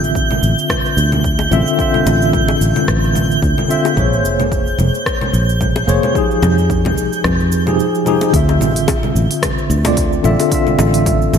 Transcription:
0.00 0.37 A1 medium
0.00 1.48 D3 medium
0.00 1.49 C4 medium
0.00 1.49 F4 medium
0.00 1.50 E5 medium
0.00 8.35 G6 medium
0.00 shaker soft
0.15 kick medium
0.15 shaker soft
0.31 low conga medium
0.31 shaker soft
0.43 0.53 A1 medium
0.43 shaker medium
0.59 shaker soft
0.70 kick medium
0.70 cross-stick medium
0.70 low conga medium
0.70 shaker soft
0.86 shaker soft
0.97 1.46 D2 medium
0.97 shaker medium
1.12 low conga medium
1.12 shaker soft
1.24 kick loud
1.24 shaker soft
1.39 high bongo medium
1.39 shaker soft
1.50 1.62 A1 loud
1.50 1.75 D3 medium
1.50 1.76 C4 medium
1.50 1.76 F4 medium
1.50 1.77 E5 loud
1.50 low conga medium
1.50 shaker medium
1.67 shaker soft
1.76 3.66 D3 medium
1.76 3.67 C4 medium
1.76 3.67 F4 medium
1.76 kick medium
1.76 shaker soft
1.81 3.68 E5 medium
1.94 low conga medium
1.94 shaker soft
2.06 2.55 A1 medium
2.06 high bongo medium
2.06 shaker medium
2.22 shaker soft
2.33 kick loud
2.33 low conga medium
2.33 shaker soft
2.48 high bongo medium
2.48 shaker soft
2.61 2.72 A1 medium
2.61 shaker medium
2.76 low conga medium
2.76 shaker soft
2.88 3.37 A1 medium
2.88 kick loud
2.88 cross-stick medium
2.88 shaker soft
3.04 shaker soft
3.15 low conga medium
3.15 shaker medium
3.31 shaker soft
3.43 3.53 D2 medium
3.43 kick loud
3.43 shaker soft
3.58 low conga medium
3.58 shaker soft
3.68 3.93 D3 medium
3.68 3.94 C4 medium
3.68 3.94 F4 medium
3.68 3.95 E5 medium
3.68 shaker medium
3.85 high bongo medium
3.85 shaker soft
3.94 4.24 A#1 medium
3.94 5.84 A#3 medium
3.94 5.85 G#4 medium
3.94 5.86 C5 medium
3.94 kick loud
3.94 low conga medium
3.94 shaker soft
3.99 5.86 C#5 medium
4.13 shaker soft
4.24 4.73 F1 medium
4.24 shaker medium
4.40 low conga medium
4.40 shaker soft
4.52 kick medium
4.52 shaker soft
4.67 shaker soft
4.79 4.89 F1 medium
4.79 low conga medium
4.79 shaker medium
4.95 shaker soft
5.06 kick loud
5.06 cross-stick medium
5.06 shaker soft
5.21 low conga medium
5.21 shaker soft
5.33 5.82 A#1 medium
5.33 shaker medium
5.49 shaker soft
5.61 kick medium
5.61 low conga medium
5.61 shaker soft
5.76 high bongo medium
5.76 shaker soft
5.87 5.99 F1 loud
5.87 6.12 A#3 medium
5.87 6.12 G#4 medium
5.87 6.13 C5 medium
5.87 6.13 C#5 medium
5.87 shaker medium
6.03 low conga medium
6.03 shaker soft
6.13 7.63 F3 medium
6.13 7.64 D#4 medium
6.13 7.64 G4 medium
6.13 kick loud
6.13 shaker soft
6.18 7.65 G#4 medium
6.31 shaker soft
6.42 6.97 F2 medium
6.42 high bongo medium
6.42 low conga medium
6.42 shaker medium
6.58 shaker soft
6.70 kick loud
6.70 shaker soft
6.85 high bongo medium
6.85 low conga medium
6.85 shaker soft
6.97 7.08 C2 medium
6.97 shaker medium
7.13 shaker soft
7.24 7.79 F2 medium
7.24 kick loud
7.24 cross-stick medium
7.24 low conga medium
7.24 shaker soft
7.40 shaker soft
7.52 shaker medium
7.66 8.03 F3 medium
7.66 8.03 D#4 medium
7.66 8.04 G4 medium
7.66 8.04 G#4 medium
7.66 low conga medium
7.66 shaker soft
7.80 shaker soft
7.95 shaker soft
8.05 8.30 F3 medium
8.05 8.31 D#4 medium
8.05 8.31 G4 medium
8.05 8.31 G#4 medium
8.05 low conga medium
8.05 shaker medium
8.21 high bongo medium
8.21 shaker soft
8.31 8.61 D2 medium
8.31 9.81 D3 medium
8.31 9.82 C4 medium
8.31 9.83 F4 medium
8.31 kick loud
8.31 open hi-hat medium
8.31 shaker soft
8.36 9.83 E5 medium
8.49 high bongo soft
8.49 shaker soft
8.61 9.10 A1 medium
8.61 low conga medium
8.61 shaker medium
8.76 open hi-hat soft
8.76 shaker soft
8.88 kick loud
8.88 open hi-hat medium
8.88 high bongo medium
8.88 shaker soft
9.03 low conga medium
9.03 shaker soft
9.15 9.26 A1 medium
9.15 shaker medium
9.31 open hi-hat soft
9.31 shaker soft
9.43 kick loud
9.43 cross-stick medium
9.43 open hi-hat medium
9.43 high bongo soft
9.43 low conga medium
9.43 shaker soft
9.58 shaker soft
9.70 10.19 D2 loud
9.70 shaker medium
9.84 10.21 D3 medium
9.84 10.21 C4 medium
9.84 10.22 F4 medium
9.84 10.22 D5 medium
9.84 open hi-hat soft
9.84 high bongo medium
9.84 low conga medium
9.84 shaker soft
9.97 kick loud
9.97 open hi-hat medium
9.97 shaker soft
10.13 shaker soft
10.23 10.35 A1 medium
10.23 10.48 D3 medium
10.23 10.49 C4 medium
10.23 10.49 F4 medium
10.23 10.49 E5 medium
10.23 low conga medium
10.23 shaker medium
10.40 open hi-hat soft
10.40 high bongo medium
10.40 shaker soft
10.49 11.38 D3 medium
10.49 11.38 C4 medium
10.49 11.38 F4 medium
10.49 kick loud
10.49 open hi-hat medium
10.49 shaker soft
10.54 11.38 E5 medium
10.67 low conga medium
10.67 shaker soft
10.79 11.28 A1 medium
10.79 high bongo medium
10.79 shaker medium
10.94 open hi-hat soft
10.94 shaker soft
11.06 kick loud
11.06 open hi-hat medium
11.06 low conga medium
11.06 shaker soft
11.22 shaker soft
11.33 11.38 A1 medium
11.33 high bongo medium
11.33 shaker medium

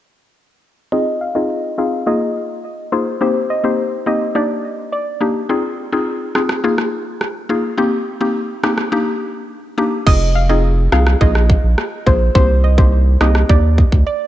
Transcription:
0.92 1.05 C4 medium
0.92 1.05 D#4 medium
0.92 1.05 F4 medium
0.92 1.06 G#4 loud
0.92 1.04 D#5 loud
1.21 1.33 F5 medium
1.35 1.75 C4 medium
1.35 1.75 D#4 medium
1.35 1.75 F4 medium
1.35 1.75 G#4 medium
1.35 1.47 D#5 medium
1.78 2.04 C4 medium
1.78 2.04 D#4 medium
1.78 2.05 F4 medium
1.78 2.05 G#4 medium
1.78 1.90 F5 medium
2.06 2.85 A#3 medium
2.06 2.86 D#4 medium
2.06 2.86 F4 medium
2.06 2.86 G#4 loud
2.06 2.47 D#5 medium
2.92 3.05 A#3 medium
2.92 3.05 D#4 medium
2.92 3.05 F4 medium
2.92 3.05 G#4 medium
2.92 3.04 C5 medium
3.21 3.34 A#3 medium
3.21 3.34 C4 medium
3.21 3.34 D#4 medium
3.21 3.34 G4 loud
3.21 3.33 C5 loud
3.50 3.62 D#5 medium
3.64 4.03 A#3 medium
3.64 4.03 C4 medium
3.64 4.03 D#4 medium
3.64 4.03 G4 medium
3.64 3.76 C5 medium
4.06 4.33 A#3 medium
4.06 4.33 C4 medium
4.06 4.33 D#4 medium
4.06 4.33 G4 medium
4.06 4.19 D#5 medium
4.35 5.14 A#3 medium
4.35 5.14 D4 medium
4.35 5.14 D#4 medium
4.35 5.14 G4 loud
4.35 4.76 D5 medium
4.92 5.33 D5 medium
5.21 5.34 A#3 medium
5.21 5.34 D4 medium
5.21 5.34 D#4 medium
5.21 5.34 G4 medium
5.49 5.62 C4 medium
5.49 5.62 D#4 medium
5.49 5.63 F4 medium
5.49 5.63 G#4 loud
5.92 6.32 C4 medium
5.92 6.32 D#4 medium
5.92 6.32 F4 medium
5.92 6.32 G#4 medium
6.35 6.61 C4 medium
6.35 6.62 D#4 medium
6.35 6.62 F4 medium
6.35 6.62 G#4 medium
6.35 cross-stick medium
6.49 cross-stick loud
6.64 7.43 A#3 medium
6.64 7.43 D#4 medium
6.64 7.43 F4 medium
6.64 7.43 G#4 loud
6.78 cross-stick medium
7.21 cross-stick medium
7.49 7.62 A#3 medium
7.49 7.62 D#4 medium
7.49 7.63 F4 medium
7.49 7.63 G#4 medium
7.78 7.91 A#3 medium
7.78 7.91 C4 medium
7.78 7.91 D#4 medium
7.78 7.91 G4 loud
8.21 8.60 A#3 medium
8.21 8.60 C4 medium
8.21 8.60 D#4 medium
8.21 8.61 G4 medium
8.63 8.90 A#3 medium
8.63 8.90 C4 medium
8.63 8.90 D#4 medium
8.63 8.90 G4 medium
8.63 cross-stick medium
8.78 cross-stick medium
8.92 9.71 A#3 medium
8.92 9.71 D4 medium
8.92 9.71 D#4 medium
8.92 9.71 G4 loud
9.78 9.91 A#3 medium
9.78 9.91 D4 medium
9.78 9.91 D#4 medium
9.78 9.91 G4 medium
10.06 10.88 F1 loud
10.06 10.20 C4 medium
10.06 10.20 D#4 medium
10.06 10.20 F4 medium
10.06 10.20 G#4 loud
10.06 10.19 D#5 loud
10.06 kick loud
10.06 crash medium
10.35 10.47 F5 medium
10.49 10.89 C4 medium
10.49 10.89 D#4 medium
10.49 10.89 F4 medium
10.49 10.89 G#4 medium
10.49 10.61 D#5 medium
10.92 11.16 C2 loud
10.92 11.19 C4 medium
10.92 11.19 D#4 medium
10.92 11.19 F4 medium
10.92 11.19 G#4 medium
10.92 11.04 F5 medium
10.92 cross-stick loud
11.07 cross-stick loud
11.21 11.56 A#1 loud
11.21 12.00 A#3 medium
11.21 12.00 D#4 medium
11.21 12.00 F4 medium
11.21 12.00 G#4 loud
11.21 11.61 D#5 loud
11.21 kick medium
11.35 cross-stick medium
11.50 kick medium
11.64 11.75 A#1 medium
11.78 cross-stick medium
12.06 12.30 A#1 medium
12.06 12.19 A#3 medium
12.06 12.20 D#4 medium
12.06 12.20 F4 medium
12.06 12.20 G#4 medium
12.06 12.19 C5 medium
12.06 kick medium
12.35 13.17 C2 loud
12.35 12.48 A#3 medium
12.35 12.48 C4 medium
12.35 12.48 D#4 medium
12.35 12.48 G4 loud
12.35 12.47 C5 loud
12.35 kick loud
12.64 12.76 D#5 medium
12.78 13.17 A#3 medium
12.78 13.18 C4 medium
12.78 13.18 D#4 medium
12.78 13.18 G4 medium
12.78 12.90 C5 medium
12.78 kick loud
13.21 13.44 C2 medium
13.21 13.47 A#3 medium
13.21 13.47 C4 medium
13.21 13.47 D#4 medium
13.21 13.48 G4 medium
13.21 13.33 D#5 medium
13.21 cross-stick loud
13.35 cross-stick loud
13.49 13.84 D#2 loud
13.49 14.27 A#3 medium
13.49 14.27 D4 medium
13.49 14.27 D#4 medium
13.49 14.27 G4 loud
13.49 13.90 D5 medium
13.49 kick medium
13.78 kick medium
13.92 14.04 D2 medium
13.92 kick medium
14.07 14.27 D5 medium

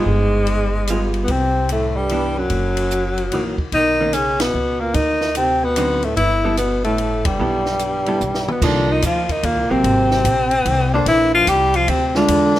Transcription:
0.00 1.11 G#2 medium
0.00 1.12 G#3 medium
0.06 1.24 G1 medium
0.47 ride soft
0.87 1.30 G3 soft
0.87 1.30 B3 soft
0.87 1.30 F4 soft
0.87 1.30 G#4 soft
0.87 hi-hat pedal medium
0.87 ride medium
1.14 ride soft
1.24 1.31 B2 soft
1.24 1.33 B3 medium
1.28 2.47 C2 medium
1.28 1.70 C3 medium
1.28 1.71 C4 medium
1.28 kick soft
1.28 ride soft
1.69 1.99 A2 medium
1.69 1.98 A3 medium
1.69 hi-hat pedal soft
1.69 ride medium
1.97 2.39 G2 medium
1.97 2.40 G3 medium
2.09 2.35 E3 medium
2.09 2.35 B3 medium
2.09 2.35 D4 medium
2.09 ride soft
2.37 3.59 F#2 medium
2.37 3.60 F#3 medium
2.50 3.28 F#1 medium
2.50 kick soft
2.50 ride soft
2.77 ride soft
2.91 hi-hat pedal soft
3.18 ride soft
3.32 3.70 A#1 medium
3.32 3.57 E3 soft
3.32 3.57 A#3 soft
3.32 3.57 D#4 medium
3.32 ride medium
3.58 kick soft
3.72 4.50 B1 medium
3.72 4.17 D#3 medium
3.72 4.15 D#4 medium
3.72 kick soft
3.72 ride soft
4.01 4.13 D#3 medium
4.01 4.13 A#3 medium
4.01 4.13 C#4 medium
4.13 4.43 C#3 medium
4.13 4.42 C#4 medium
4.13 hi-hat pedal soft
4.13 ride medium
4.40 4.82 B2 medium
4.40 4.82 B3 medium
4.40 snare medium
4.40 ride medium
4.54 4.92 C#2 medium
4.80 4.97 A#2 medium
4.80 4.96 A#3 medium
4.94 6.13 D2 medium
4.94 5.36 D#3 medium
4.94 5.36 D#4 medium
4.94 kick soft
4.94 ride medium
5.21 snare soft
5.35 5.66 C3 medium
5.35 5.66 C4 medium
5.35 hi-hat pedal soft
5.35 ride medium
5.64 6.05 B2 medium
5.64 6.06 B3 medium
5.76 6.01 D3 medium
5.76 6.01 F#3 medium
5.76 6.02 C4 medium
5.76 6.02 D#4 medium
5.76 hi-hat pedal soft
5.76 ride medium
6.03 6.18 A2 medium
6.03 6.16 A3 medium
6.03 ride soft
6.17 7.36 G1 medium
6.17 6.56 E3 medium
6.17 6.55 E4 medium
6.17 kick soft
6.17 ride medium
6.44 6.57 G3 medium
6.44 6.57 B3 medium
6.44 6.58 E4 medium
6.44 6.58 A4 medium
6.57 6.83 B2 medium
6.57 6.83 B3 medium
6.57 hi-hat pedal soft
6.57 ride medium
6.84 7.28 A2 medium
6.84 7.28 A3 medium
6.84 ride soft
6.98 ride soft
7.25 8.49 G2 medium
7.25 8.49 G3 medium
7.25 kick medium
7.25 ride medium
7.39 8.17 B1 medium
7.39 7.64 G3 soft
7.39 7.64 B3 soft
7.39 7.64 E4 soft
7.39 7.64 A4 medium
7.66 snare soft
7.79 hi-hat pedal soft
7.79 ride soft
8.06 8.20 G3 medium
8.06 8.20 B3 medium
8.06 8.20 E4 medium
8.06 8.21 A4 medium
8.06 ride soft
8.21 8.59 B1 medium
8.21 hi-hat pedal soft
8.35 snare soft
8.48 8.65 B2 medium
8.48 8.66 B3 medium
8.48 mid tom medium
8.62 9.02 C2 medium
8.62 8.91 D3 medium
8.62 9.25 F3 medium
8.62 9.25 A#3 medium
8.62 8.93 D4 medium
8.62 9.25 D#4 medium
8.62 kick medium
8.62 crash medium
8.89 9.03 D#3 medium
8.89 9.05 D#4 medium
9.02 9.42 D2 medium
9.02 9.32 F3 medium
9.02 kick soft
9.02 hi-hat pedal medium
9.02 ride medium
9.06 9.33 F4 medium
9.29 9.47 D#3 medium
9.29 9.47 D#4 medium
9.29 kick soft
9.29 ride soft
9.43 9.56 D#2 medium
9.43 9.72 A#2 medium
9.43 9.73 A#3 medium
9.43 kick soft
9.43 ride medium
9.56 9.70 C2 soft
9.70 9.83 A#1 medium
9.70 10.77 C3 medium
9.70 10.23 F#3 medium
9.70 10.23 A#3 medium
9.70 10.93 C4 medium
9.70 10.23 C4 medium
9.84 10.24 G#1 medium
9.84 kick soft
9.84 ride medium
10.11 snare soft
10.25 10.65 A#1 medium
10.25 kick soft
10.25 hi-hat pedal soft
10.25 ride medium
10.51 ride soft
10.65 11.05 C2 medium
10.65 kick soft
10.65 ride medium
10.94 11.06 D3 medium
10.94 11.45 A#3 medium
10.94 11.46 D4 medium
10.94 11.07 D4 medium
10.94 11.46 A4 medium
10.94 11.46 C5 medium
11.06 11.46 A#1 medium
11.06 11.32 E3 medium
11.06 11.32 E4 medium
11.06 kick soft
11.06 ride medium
11.34 11.50 F3 medium
11.34 11.50 F4 medium
11.47 11.87 C2 medium
11.47 11.78 G3 medium
11.47 11.77 G4 medium
11.47 kick soft
11.47 hi-hat pedal medium
11.47 ride medium
11.74 11.91 F3 medium
11.74 11.91 F4 medium
11.74 ride soft
11.88 12.28 D2 medium
11.88 12.06 C3 medium
11.88 12.06 C4 medium
11.88 kick soft
11.88 ride medium
12.06 12.18 C3 medium
12.06 12.17 C4 medium
12.15 12.59 D3 medium
12.15 12.59 G#3 medium
12.15 12.59 D4 medium
12.15 12.59 F4 medium
12.15 snare soft
12.28 12.59 E2 medium
12.28 kick soft
12.28 ride medium
12.55 snare soft

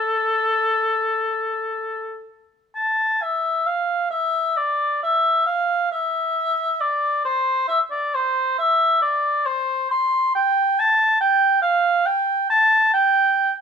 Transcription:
0.00 2.27 A4 medium
2.75 3.24 A5 medium
3.22 3.68 E5 medium
3.67 4.10 F5 medium
4.11 4.58 E5 medium
4.57 5.02 D5 medium
5.03 5.46 E5 medium
5.46 5.91 F5 medium
5.92 6.82 E5 medium
6.81 7.24 D5 medium
7.25 7.68 C5 medium
7.69 7.79 E5 medium
7.91 8.16 D5 medium
8.15 8.58 C5 medium
8.59 9.01 E5 medium
9.02 9.48 D5 medium
9.46 9.90 C5 medium
9.91 10.34 C6 medium
10.35 10.81 G5 medium
10.79 11.20 A5 medium
11.21 11.61 G5 medium
11.62 12.08 F5 medium
12.06 12.50 G5 medium
12.50 12.93 A5 medium
12.94 13.52 G5 medium

